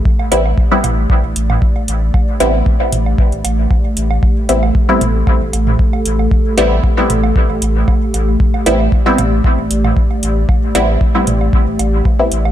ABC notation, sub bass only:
X:1
M:4/4
L:1/16
Q:"Swing 16ths" 1/4=115
K:Am
V:1 name="Sub bass" clef=bass
z2 A,,,2 z2 A,,,2 z A,,, A,,,2 z2 A,,,2 | z2 A,,,2 z2 A,,,2 z A,,, A,,,2 z2 A,,,2 | z2 A,,,2 z2 A,,,2 z A,,, A,,,2 z2 A,,,2 | z2 A,,,2 z2 A,,,2 z A,,, A,,,2 z2 A,,,2 |
z2 A,,,2 z2 A,,,2 z A,,, A,,,2 z2 A,,,2 | z2 A,,,2 z2 A,,,2 z A,,, A,,,2 z2 A,,,2 |]